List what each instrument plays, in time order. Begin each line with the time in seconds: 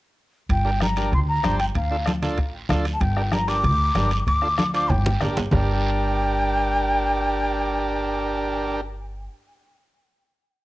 0.49 upright bass G1, flute G5, bombo low, high conga, high timbale, long guiro
0.65 transistor combo organ D4 G4 A#4
0.81 transistor combo organ D4 G4 A#4, flute A#5, bombo rim, high conga, high timbale, short guiro
0.96 transistor combo organ D4 G4 A#4, high timbale, short guiro
1.12 upright bass D2, flute C6, bombo low, high conga, high timbale, long guiro
1.29 flute A#5
1.43 upright bass G1, transistor combo organ D4 G4 C5, bombo rim, high conga, high timbale, short guiro
1.59 flute G5, high timbale, short guiro
1.75 upright bass D2, flute F5, bombo low, high conga, high timbale, long guiro
1.91 transistor combo organ D4 F4 A4
2.06 transistor combo organ D4 F4 A4, bombo rim, high conga, high timbale, short guiro
2.22 transistor combo organ D4 F4 A4, low conga, high timbale, short guiro
2.38 upright bass A1, bombo low, high conga, high timbale, long guiro
2.69 upright bass D2, transistor combo organ D4 F4 A4, bombo rim, high conga, low conga, high timbale, short guiro
2.85 high timbale, short guiro
2.93 flute A5
3.01 upright bass G1, flute G5, bombo low, high conga, high timbale, long guiro
3.16 transistor combo organ D4 G4 A#4, bombo rim
3.32 transistor combo organ D4 G4 A#4, flute A#5, bombo rim, high conga, high timbale, short guiro
3.48 transistor combo organ D4 G4 A#4, flute D6, high timbale, short guiro
3.63 upright bass D2, bombo low, high conga, high timbale, long guiro
3.95 upright bass G1, transistor combo organ D4 G4 A#4, bombo rim, high conga, high timbale, low timbale, short guiro
4.11 high timbale, short guiro
4.27 upright bass D2, flute D6, bombo low, high conga, high timbale, long guiro
4.42 transistor combo organ D4 F4 A4, bombo rim
4.58 transistor combo organ D4 F4 A4, bombo rim, high conga, high timbale, short guiro
4.74 transistor combo organ D4 F4 C5, flute D6, high timbale, short guiro
4.89 upright bass G1, flute G5, bombo low, low conga, high timbale, long guiro
5.06 low conga
5.21 upright bass A1, transistor combo organ D4 G4 A#4, bombo rim, low conga, low timbale, short guiro
5.37 upright bass G1, low conga, low timbale, short guiro
5.51 upright bass G1, transistor combo organ D4 G4 A#4, flute G5, bombo low, low conga, low timbale, long guiro